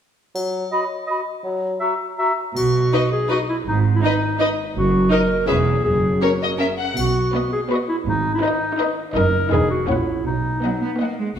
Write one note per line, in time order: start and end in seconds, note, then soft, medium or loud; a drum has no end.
0.35 0.66 F#3 soft
0.35 triangle soft
0.72 0.85 F#4 soft
0.72 0.85 D#5 soft
0.72 0.79 B5 soft
1.07 1.22 F#4 soft
1.07 1.20 D#5 soft
1.07 1.16 B5 soft
1.44 1.75 F#3 soft
1.80 1.94 F#4 soft
1.80 1.94 E5 soft
1.80 1.88 A#5 soft
2.18 2.32 F#4 soft
2.18 2.32 E5 soft
2.18 2.25 A#5 soft
2.55 2.87 B1 soft
2.55 2.86 B2 soft
2.55 3.08 F#4 medium
2.55 triangle soft
2.93 3.01 D#4 soft
2.93 3.01 B4 soft
2.93 3.01 D#5 soft
3.12 3.29 G#4 medium
3.29 3.37 D#4 soft
3.29 3.38 F#4 medium
3.29 3.37 B4 soft
3.29 3.39 D#5 soft
3.49 3.57 E4 medium
3.67 3.97 G#1 soft
3.67 3.97 G#2 soft
3.67 3.80 D#4 medium
3.95 4.02 E4 medium
4.02 4.10 D#4 soft
4.02 4.56 D#4 medium
4.02 4.13 B4 soft
4.02 4.13 D#5 soft
4.39 4.47 D#4 soft
4.39 4.49 B4 soft
4.39 4.47 D#5 soft
4.75 5.05 F#1 medium
4.75 5.05 F#2 soft
4.75 5.09 F#4 medium
5.11 5.19 D#4 soft
5.11 5.47 A#4 medium
5.11 5.20 A#4 soft
5.11 5.19 D#5 soft
5.46 5.79 E1 soft
5.46 5.79 E2 soft
5.46 5.54 C#4 soft
5.46 5.84 G#4 medium
5.46 5.56 B4 soft
5.46 5.55 E5 soft
5.84 6.16 F#1 soft
5.84 6.16 F#2 soft
5.84 6.24 G#4 medium
6.22 6.31 C#4 soft
6.22 6.60 F#4 soft
6.22 6.30 A#4 soft
6.22 6.29 C#5 soft
6.42 6.50 D#5 soft
6.58 6.67 C#4 soft
6.58 6.66 A#4 soft
6.58 6.67 E5 soft
6.79 6.97 F#5 soft
6.97 7.26 B1 soft
6.97 7.26 B2 soft
6.97 7.48 F#4 medium
6.97 triangle soft
7.34 7.61 B3 soft
7.34 7.61 B4 soft
7.34 7.62 D#5 soft
7.53 7.61 G#4 medium
7.70 7.97 B3 soft
7.70 7.79 F#4 medium
7.70 7.97 B4 soft
7.70 7.98 D#5 soft
7.89 7.97 E4 medium
8.07 8.35 G#1 medium
8.07 8.36 G#2 medium
8.07 8.34 D#4 medium
8.35 8.44 E4 medium
8.42 8.97 D#4 medium
8.42 8.70 D#4 medium
8.42 8.70 B4 medium
8.42 8.70 D#5 soft
8.79 9.06 D#4 medium
8.79 9.06 B4 medium
8.79 9.06 D#5 medium
9.15 9.44 F#1 medium
9.15 9.44 F#2 medium
9.15 9.43 D#4 soft
9.15 9.53 A#4 medium
9.15 9.42 A#4 medium
9.15 9.42 D#5 medium
9.51 9.80 E1 medium
9.51 9.80 E2 medium
9.51 9.78 D#4 medium
9.51 9.70 G#4 medium
9.51 9.79 B4 soft
9.51 9.79 G#5 soft
9.70 9.88 F#4 medium
9.88 10.17 A#1 soft
9.88 10.17 A#2 medium
9.88 10.15 C#4 soft
9.88 10.25 E4 medium
9.88 10.16 C#5 soft
9.88 10.16 F#5 soft
10.24 10.55 B1 soft
10.24 10.55 B2 soft
10.24 11.00 D#4 medium
10.62 10.80 F#3 soft
10.62 10.91 B3 soft
10.62 10.91 D#5 soft
10.62 10.91 F#5 soft
10.82 10.89 B3 soft
11.00 11.19 A#3 soft
11.00 11.28 B3 soft
11.00 11.28 D#5 soft
11.00 11.29 F#5 soft
11.19 11.27 G#3 soft